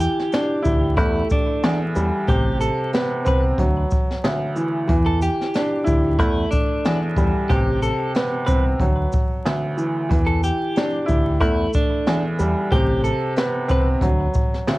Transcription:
0.00 0.97 E3 medium
0.00 0.94 G4 medium
0.00 closed hi-hat medium
0.00 shaker medium
0.20 snare soft
0.32 0.98 D4 medium
0.32 snare loud
0.32 closed hi-hat medium
0.62 0.98 D2 loud
0.62 0.96 E4 medium
0.62 kick loud
0.62 shaker medium
0.97 1.23 E2 loud
0.97 2.28 A3 medium
0.97 1.27 E4 medium
0.97 kick medium
0.97 closed hi-hat medium
1.30 1.79 D4 medium
1.30 kick medium
1.30 shaker medium
1.63 2.28 E2 medium
1.63 snare loud
1.63 closed hi-hat medium
1.96 2.10 E2 medium
1.96 2.28 G3 medium
1.96 shaker medium
2.28 2.67 A1 loud
2.28 3.58 C3 medium
2.28 2.58 G4 loud
2.28 kick loud
2.28 closed hi-hat loud
2.61 2.90 A4 medium
2.61 shaker medium
2.93 3.58 B3 medium
2.93 snare loud
2.93 closed hi-hat medium
3.25 3.51 C2 medium
3.25 3.58 C4 loud
3.25 3.43 B4 medium
3.25 kick medium
3.25 shaker medium
3.58 3.83 D2 loud
3.58 4.89 F#3 medium
3.58 kick medium
3.58 closed hi-hat medium
3.91 kick medium
3.91 shaker medium
4.11 snare soft
4.24 4.89 D2 medium
4.24 snare loud
4.24 closed hi-hat medium
4.56 4.86 E3 medium
4.56 shaker medium
4.88 5.28 E2 loud
4.88 6.19 E3 medium
4.88 kick loud
4.88 closed hi-hat loud
5.06 5.19 A4 medium
5.22 6.16 G4 medium
5.22 closed hi-hat medium
5.22 shaker medium
5.41 snare soft
5.54 6.20 D4 medium
5.54 snare loud
5.54 closed hi-hat medium
5.84 6.19 D2 loud
5.84 6.18 E4 medium
5.84 kick medium
5.84 shaker medium
6.19 6.44 E2 loud
6.19 7.49 A3 medium
6.19 6.49 E4 medium
6.19 kick medium
6.19 closed hi-hat medium
6.51 6.99 D4 medium
6.51 kick medium
6.51 closed hi-hat soft
6.51 shaker medium
6.85 7.50 E2 medium
6.85 snare loud
6.85 closed hi-hat medium
7.17 7.31 E2 medium
7.17 7.50 G3 medium
7.17 kick loud
7.17 shaker medium
7.49 7.89 A1 loud
7.49 8.80 C3 medium
7.49 7.79 G4 loud
7.49 kick loud
7.49 closed hi-hat loud
7.82 8.12 A4 medium
7.82 shaker medium
8.15 8.80 B3 medium
8.15 snare loud
8.15 closed hi-hat medium
8.46 8.73 C2 medium
8.46 8.80 C4 medium
8.46 8.63 B4 medium
8.46 kick loud
8.46 shaker medium
8.80 9.05 D2 loud
8.80 10.11 F#3 medium
8.80 kick medium
8.80 closed hi-hat medium
9.12 kick medium
9.12 closed hi-hat medium
9.12 shaker medium
9.45 10.11 D2 medium
9.45 snare loud
9.45 closed hi-hat medium
9.77 10.08 E3 medium
9.77 shaker medium
10.09 10.50 E2 loud
10.09 11.40 E3 medium
10.09 kick loud
10.09 closed hi-hat loud
10.27 10.41 A4 medium
10.43 11.37 G4 medium
10.43 shaker medium
10.76 11.42 D4 medium
10.76 snare loud
10.76 closed hi-hat medium
11.06 11.41 D2 loud
11.06 11.40 E4 medium
11.06 kick loud
11.06 shaker medium
11.40 11.66 E2 loud
11.40 12.71 A3 medium
11.40 11.70 E4 medium
11.40 kick medium
11.40 closed hi-hat medium
11.73 12.22 D4 medium
11.73 kick medium
11.73 shaker medium
12.06 12.72 E2 medium
12.06 snare loud
12.06 closed hi-hat medium
12.39 12.53 E2 medium
12.39 12.72 G3 medium
12.39 shaker medium
12.71 13.11 A1 loud
12.71 14.02 C3 medium
12.71 13.01 G4 loud
12.71 kick loud
12.71 closed hi-hat loud
13.04 13.33 A4 medium
13.04 closed hi-hat medium
13.04 shaker medium
13.36 14.02 B3 medium
13.36 snare loud
13.36 closed hi-hat medium
13.68 13.95 C2 medium
13.68 14.01 C4 medium
13.68 13.87 B4 medium
13.68 kick loud
13.68 shaker medium
14.01 14.27 D2 loud
14.01 14.78 F#3 medium
14.01 kick medium
14.01 closed hi-hat medium
14.34 kick medium
14.34 shaker medium
14.54 snare soft
14.67 14.78 D2 medium
14.67 snare loud
14.67 closed hi-hat medium

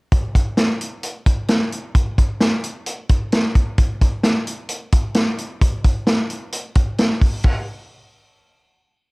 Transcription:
0.12 kick loud
0.12 closed hi-hat medium
0.35 kick medium
0.35 closed hi-hat medium
0.57 snare medium
0.57 closed hi-hat medium
0.81 closed hi-hat medium
1.03 closed hi-hat medium
1.26 kick medium
1.26 closed hi-hat medium
1.48 snare loud
1.48 closed hi-hat medium
1.72 closed hi-hat medium
1.95 kick loud
1.95 closed hi-hat medium
2.18 kick medium
2.18 closed hi-hat medium
2.41 snare medium
2.41 closed hi-hat medium
2.64 closed hi-hat medium
2.86 closed hi-hat medium
3.09 kick medium
3.09 closed hi-hat medium
3.32 snare loud
3.32 closed hi-hat medium
3.55 kick medium
3.55 closed hi-hat medium
3.78 kick loud
3.78 closed hi-hat medium
4.01 kick medium
4.01 closed hi-hat medium
4.23 snare medium
4.23 closed hi-hat medium
4.47 closed hi-hat medium
4.69 closed hi-hat medium
4.92 kick medium
4.92 closed hi-hat medium
5.14 snare loud
5.14 closed hi-hat medium
5.38 closed hi-hat medium
5.61 kick loud
5.61 closed hi-hat medium
5.84 kick medium
5.84 closed hi-hat medium
6.07 snare loud
6.07 closed hi-hat medium
6.30 closed hi-hat medium
6.52 closed hi-hat medium
6.75 kick medium
6.75 closed hi-hat medium
6.98 snare loud
6.98 closed hi-hat medium
7.21 kick medium
7.21 open hi-hat medium
7.44 kick medium
7.44 crash medium

